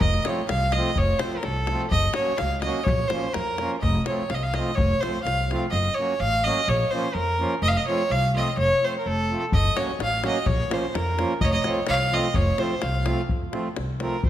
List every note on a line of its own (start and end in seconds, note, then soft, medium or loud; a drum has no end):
0.00 0.15 F1 loud
0.00 0.22 D#5 loud
0.00 davul low medium
0.14 davul high soft
0.22 0.42 F3 medium
0.22 0.42 A3 medium
0.22 0.29 D#5 medium
0.22 davul high medium
0.26 0.42 C4 medium
0.26 0.42 F4 medium
0.26 0.48 C#5 medium
0.49 0.78 C2 medium
0.49 0.74 F5 loud
0.49 davul high medium
0.72 0.90 F3 medium
0.72 0.91 C4 medium
0.72 1.00 D#5 medium
0.72 davul high medium
0.76 0.91 A3 medium
0.76 0.91 F4 medium
0.96 1.12 F1 loud
0.96 1.20 C#5 loud
0.96 davul low medium
1.18 1.37 F3 medium
1.18 1.37 A3 medium
1.18 1.37 C4 medium
1.18 1.39 C5 medium
1.18 davul high medium
1.23 1.38 F4 medium
1.32 davul high soft
1.37 1.46 A#4 medium
1.43 1.74 C2 medium
1.43 1.81 A4 medium
1.43 davul high medium
1.56 davul high soft
1.67 1.86 F3 medium
1.67 1.86 A3 medium
1.67 davul high medium
1.71 1.86 C4 medium
1.71 1.86 F4 medium
1.81 davul high soft
1.91 2.07 F#1 loud
1.91 2.14 D#5 loud
1.91 davul low medium
2.04 davul high soft
2.14 2.32 F#3 medium
2.14 2.33 A#3 medium
2.14 2.39 C#5 medium
2.14 davul high medium
2.18 2.33 C#4 medium
2.18 2.33 F#4 medium
2.38 2.69 C#2 medium
2.38 2.61 F5 medium
2.38 davul high medium
2.62 2.79 F#3 medium
2.62 2.80 A#3 medium
2.62 2.80 C#4 medium
2.62 2.81 F#4 medium
2.62 2.85 D#5 medium
2.62 davul high medium
2.84 3.10 C#5 loud
2.84 davul low loud
2.88 3.02 A#1 loud
2.99 davul high soft
3.08 3.28 F3 medium
3.08 3.35 C5 medium
3.08 davul high medium
3.12 3.28 A#3 medium
3.12 3.28 C#4 medium
3.12 3.28 F4 medium
3.33 3.64 F2 medium
3.33 3.71 A#4 medium
3.33 davul high medium
3.58 3.75 F3 medium
3.58 3.75 A#3 medium
3.58 3.76 C#4 medium
3.58 3.77 F4 medium
3.58 davul high medium
3.82 3.97 F1 loud
3.82 4.05 D#5 medium
3.82 davul low medium
3.95 davul high soft
4.06 4.23 F3 medium
4.06 4.23 A3 medium
4.06 4.23 C4 medium
4.06 4.23 F4 medium
4.06 4.32 C#5 medium
4.06 davul high medium
4.30 4.59 C2 medium
4.30 4.36 F5 loud
4.30 davul high medium
4.35 4.45 D#5 medium
4.43 4.56 F5 medium
4.54 4.71 F3 medium
4.54 4.71 A3 medium
4.54 4.72 C4 medium
4.54 4.76 D#5 medium
4.54 davul high medium
4.58 4.72 F4 medium
4.75 4.92 F1 loud
4.75 5.02 C#5 loud
4.75 davul low medium
4.92 davul high soft
5.00 5.18 F3 medium
5.00 5.17 A3 medium
5.00 5.19 C4 medium
5.00 5.19 F4 medium
5.00 5.22 C5 medium
5.00 davul high medium
5.23 5.54 C2 medium
5.23 5.58 F5 medium
5.23 davul high medium
5.40 davul high soft
5.49 5.65 F3 medium
5.49 5.66 A3 medium
5.49 5.66 C4 medium
5.49 5.66 F4 medium
5.49 davul high medium
5.63 davul high soft
5.71 5.87 F#1 loud
5.71 5.96 D#5 medium
5.95 6.13 F#3 medium
5.95 6.21 C#5 medium
5.99 6.14 A#3 medium
5.99 6.14 C#4 medium
5.99 6.14 F#4 medium
6.20 6.48 A1 medium
6.20 6.45 F5 loud
6.44 6.60 F#3 medium
6.44 6.60 A#3 medium
6.44 6.61 C#4 medium
6.44 6.61 F#4 medium
6.44 6.70 D#5 loud
6.68 6.82 A#1 loud
6.68 6.92 C#5 loud
6.91 7.08 F3 medium
6.91 7.08 A#3 medium
6.91 7.08 C#4 medium
6.91 7.08 F4 medium
6.91 7.16 C5 medium
7.14 7.43 F2 medium
7.14 7.51 A#4 loud
7.38 7.54 F3 medium
7.38 7.54 A#3 medium
7.38 7.55 C#4 medium
7.38 7.55 F4 medium
7.62 7.76 F1 loud
7.62 7.70 D#5 loud
7.68 7.78 F5 medium
7.77 7.86 D#5 loud
7.87 8.02 F3 medium
7.87 8.03 A3 medium
7.87 8.03 C4 medium
7.87 8.03 F4 medium
7.87 8.13 C#5 loud
8.10 8.38 C2 loud
8.10 8.34 F5 loud
8.34 8.49 F3 medium
8.34 8.49 A3 medium
8.34 8.50 C4 medium
8.34 8.50 F4 medium
8.34 8.57 D#5 medium
8.57 8.71 F1 loud
8.57 8.86 C#5 loud
8.80 8.96 F3 medium
8.80 8.96 A3 medium
8.80 8.97 C4 medium
8.80 8.97 F4 medium
8.85 8.98 C5 medium
8.98 9.08 A#4 medium
9.06 9.34 F1 medium
9.06 9.41 A4 loud
9.29 9.44 F3 medium
9.29 9.45 A3 medium
9.29 9.45 C4 medium
9.29 9.45 F4 medium
9.52 9.67 F#1 loud
9.52 9.78 D#5 loud
9.52 davul low medium
9.65 davul high soft
9.75 9.91 F#3 medium
9.75 9.91 A#3 medium
9.75 9.91 C#4 medium
9.75 9.92 F#4 medium
9.75 9.99 C#5 medium
9.75 davul high medium
9.99 10.27 A1 medium
9.99 davul high medium
10.03 10.23 F5 medium
10.21 10.38 F#3 medium
10.21 10.38 A#3 medium
10.21 10.38 C#4 medium
10.21 10.39 F#4 medium
10.21 davul high medium
10.28 10.48 D#5 medium
10.46 10.60 A#1 loud
10.46 10.75 C#5 medium
10.46 davul low medium
10.60 davul high soft
10.69 10.85 F3 medium
10.69 10.85 A#3 medium
10.69 10.86 C#4 medium
10.69 10.86 F4 medium
10.69 davul high medium
10.73 10.96 C5 medium
10.94 11.23 F2 medium
10.94 11.30 A#4 medium
10.94 davul high medium
11.17 11.33 F3 medium
11.17 11.33 A#3 medium
11.17 11.34 C#4 medium
11.17 11.34 F4 medium
11.17 davul high medium
11.41 11.55 F1 loud
11.41 11.54 C#5 medium
11.41 11.45 D#5 loud
11.41 davul low medium
11.52 11.64 D#5 loud
11.52 davul high soft
11.63 11.79 F3 medium
11.63 11.79 A3 medium
11.63 11.80 C4 medium
11.63 11.80 F4 medium
11.63 11.90 C#5 medium
11.63 davul high medium
11.87 12.17 C2 medium
11.87 12.15 F5 loud
11.87 davul high medium
12.11 12.27 F3 medium
12.11 12.28 A3 medium
12.11 12.27 C4 medium
12.11 12.28 F4 medium
12.11 12.37 D#5 medium
12.34 12.50 F1 loud
12.34 12.61 C#5 loud
12.34 davul low medium
12.47 davul high soft
12.57 12.74 F3 medium
12.57 12.74 A3 medium
12.57 12.75 C4 medium
12.57 12.75 F4 medium
12.57 12.83 C5 medium
12.57 davul high medium
12.71 davul high soft
12.82 13.12 C2 medium
12.82 13.19 F5 medium
12.82 davul high medium
12.94 davul high soft
13.03 13.21 F3 medium
13.03 13.21 A3 medium
13.03 13.22 C4 medium
13.03 13.22 F4 medium
13.03 davul high medium
13.19 davul high soft
13.29 13.45 F2 medium
13.29 davul low medium
13.50 13.68 F3 medium
13.50 13.68 A3 medium
13.50 13.69 C4 medium
13.50 13.69 F4 medium
13.50 davul high medium
13.76 14.06 C2 medium
13.76 davul high medium
13.99 14.16 F3 medium
13.99 14.16 A3 medium
13.99 14.17 C4 medium
13.99 14.17 F4 medium
13.99 14.24 A#4 medium
13.99 davul high medium
14.23 14.30 F2 medium
14.23 14.30 C5 medium
14.23 davul low medium